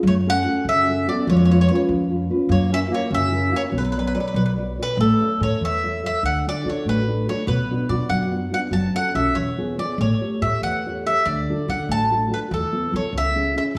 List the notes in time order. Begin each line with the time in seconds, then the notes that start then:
0.03 F#2 F#3
0.07 A3 C#5
0.27 C#4 F#4 A4 F#5
0.46 C#4 F#4 A4
0.65 F#2 C#3 C#4 E5
0.88 C#4 F#4 A4
1.08 B3 C#4 F#4 A4 D5
1.27 F2 F3 G#3 C#5
1.37 C#5
1.45 C#5
1.50 C#4 F4 B4 C#5
1.61 C#5
1.69 C#4 F4 B4 C#5
1.75 C#5
1.88 F2 F3
2.09 C#4 F4 B4
2.30 C#4 F4 B4
2.49 F#2 F#3 A#3 C#5
2.71 C#4 E4 F#4 A#4 E5
2.90 A#3 E4 F#4 A#4
2.94 C#5
3.10 F#2 C#3 C#4
3.14 E5
3.32 E4 F#4 A#4
3.52 A#3 E4 F#4 A#4
3.56 C#5
3.72 B1 F#3 B3
3.78 B4
3.85 B4
3.92 B4 C#5 D5
3.99 B4
4.07 B4
4.15 B4 C#5 D5
4.20 B4
4.28 B4
4.34 B1 F#3 B4
4.46 B4
4.57 B4 C#5 D5
4.78 B4 C#5 D5
4.83 B4
4.97 A1 A3 A4
5.21 A4 C#5 E5
5.41 A2 A4 C#5 E5
5.61 E2 E3 E5
5.83 A4 C#5 E5
6.03 A4 C#5 E5
6.23 D2 D3 F#5
6.47 D4 F#4 A4 D5
6.65 D3 D4 F#4 A4
6.70 C#5
6.85 A1 A3 B4
7.08 D4 F#4 A4
7.28 D4 F#4 A4 C#5
7.47 B1 B2 B4
7.70 B3 D4 F#4
7.89 B2 B3 D4 F#4 D5
8.09 F#2 F#3 F#5
8.32 B3 D4 F#4
8.51 B3 D4 F#4 F#5
8.71 F#1 F#3 A5
8.95 C#4 F#4 A4 F#5
9.15 B1 C#4 F#4 A4 E5
9.35 E1 E3 C#5
9.57 B3 E4 G#4
9.78 B3 E4 G#4 D5
9.98 A1 A3 C#5
10.21 G4 A4 C#5
10.41 A2 G4 A4 C#5 E5
10.62 E2 E3 F#5
10.87 G4 A4 C#5
11.06 G4 A4 C#5 E5
11.25 D2 D3 D5
11.49 D4 F#4 A4
11.68 D3 D4 F#4 F#5
11.89 A1 A3 A5
12.11 D4 F#4 A4
12.29 D4 F#4 A4
12.34 B4
12.51 E2 E3 A4
12.72 B3 E4 A4
12.91 E3 B3 E4 A4
12.96 C#5
13.12 C#2 C#3
13.18 E5
13.35 C#4 E4 G#4
13.56 C#4 E4 G#4 E5
13.75 A1